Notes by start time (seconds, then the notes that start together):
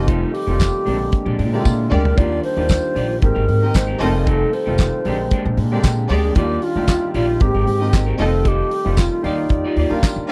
Already playing: F1 D#3 F3 G3 A3 C4 D#4 F4 G4 A4
0.07 A3 D#4 F4 G4, kick, closed hi-hat
0.33 G4, muted clean electric guitar stroke, open hi-hat
0.47 F1 D#3 G3 A3 C4 D#4 F4 G4
0.60 kick, snare, clap, closed hi-hat, tambourine
0.73 muted clean electric guitar stroke
0.85 A#1 C3 G#3 A#3 C4 D4 G4, open hi-hat
0.93 D3
0.98 muted clean electric guitar stroke
1.12 muted clean electric guitar stroke, kick, closed hi-hat
1.26 A#1 G#3 D4 G4
1.38 A#2 G#3 D4 G4, open hi-hat
1.52 D3 G#3 A#3 C4 E4 G4 D5, muted clean electric guitar stroke
1.61 F4
1.65 A#2, kick, high tom, tambourine
1.79 muted clean electric guitar stroke
1.90 D2 G#3 D4 G4 A#4 D5, mid tom
2.04 G#3 D4 G4, floor tom
2.17 D#2 D#3 G3 A#3 D4 F4 G4 D5, kick, closed hi-hat
2.43 C5, muted clean electric guitar stroke, open hi-hat
2.57 D#2 D#3 G3 A#3 D4 F4 G4 D5
2.69 muted clean electric guitar stroke, kick, snare, clap, closed hi-hat, tambourine
2.83 muted clean electric guitar stroke
2.95 A#1 F4 G4 D5, open hi-hat
3.09 muted clean electric guitar stroke
3.21 G#1 D#3 G#3 A#3 C4 G4 A#4, muted clean electric guitar stroke, kick, closed hi-hat
3.35 G#1 C4 G4 A#4
3.47 G#2, muted clean electric guitar stroke, open hi-hat
3.61 D#3 G#3 A#3 C4 G4 A#4 D#5, muted clean electric guitar stroke
3.74 G#1 C5, kick, snare, clap, closed hi-hat, tambourine
3.87 C4 G4 A#4
3.99 F1 D#3 F3 G3 A3 C4 D#4 F4 G4 A4 A#4 D#5, open hi-hat
4.14 muted clean electric guitar stroke
4.26 A3 D#4 G4 A4, kick, closed hi-hat
4.52 C5, muted clean electric guitar stroke, open hi-hat
4.66 F1 D#3 G3 A3 C4 D#4 F4 G4
4.78 muted clean electric guitar stroke, kick, snare, clap, closed hi-hat, tambourine
4.93 muted clean electric guitar stroke
5.05 A#1 D3 G#3 A#3 C4 D4 G4, open hi-hat
5.20 muted clean electric guitar stroke
5.31 G#3 D4 G4, kick, closed hi-hat
5.45 A#1, muted clean electric guitar stroke
5.57 A#2, muted clean electric guitar stroke, open hi-hat
5.72 D3 G#3 A#3 C4 D4 G4 D5
5.83 A#2, kick, snare, clap, closed hi-hat, tambourine
5.98 muted clean electric guitar stroke
6.09 D2 G#3 D4 G4 G#4 D5, open hi-hat
6.23 G#3 D4 G4
6.35 D#2 D#3 G3 A#3 D4 F4 G4 D5, kick, closed hi-hat
6.62 F4, muted clean electric guitar stroke, open hi-hat
6.76 D#2 D#3 G3 A#3 D4 E4 F4 G4 D5
6.84 F4, muted clean electric guitar stroke, kick, tambourine
6.89 snare, clap, closed hi-hat
7.02 muted clean electric guitar stroke
7.14 A#1 F4 G4 D5, open hi-hat
7.28 muted clean electric guitar stroke
7.40 G#1 D#3 G#3 A#3 C4 G4, muted clean electric guitar stroke, kick, closed hi-hat
7.54 G#1 C4 G4 A#4
7.67 G#2, muted clean electric guitar stroke, open hi-hat
7.80 D#3 G#3 A#3 C4 F#4 A#4 D#5, muted clean electric guitar stroke
7.88 G4
7.93 G#1, kick, snare, clap, closed hi-hat, tambourine
8.06 C4 G4 A#4
8.18 F1 D#3 F3 G3 A3 C4 D#4 F4 G4 A4 D#5, open hi-hat
8.32 muted clean electric guitar stroke
8.43 G4 A4 D#5, kick, closed hi-hat
8.48 G4
8.71 muted clean electric guitar stroke, open hi-hat
8.85 F1 D#3 G3 A3 C4 F4 G4 A4 D#5
8.97 F4, muted clean electric guitar stroke, kick, snare, clap, closed hi-hat, tambourine
9.12 muted clean electric guitar stroke
9.23 D#2 D#3 G3 A#3 D#4 F4 G4 D5, open hi-hat
9.38 muted clean electric guitar stroke
9.49 F2, muted clean electric guitar stroke, kick, closed hi-hat
9.64 F4 G4 D5
9.76 D#2 F4 G4 D5, open hi-hat
9.89 D#2 D#3 G3 A#3 D4 F4 A#4 F5, muted clean electric guitar stroke
10.03 kick, snare, clap, closed hi-hat, tambourine
10.16 D#3, muted clean electric guitar stroke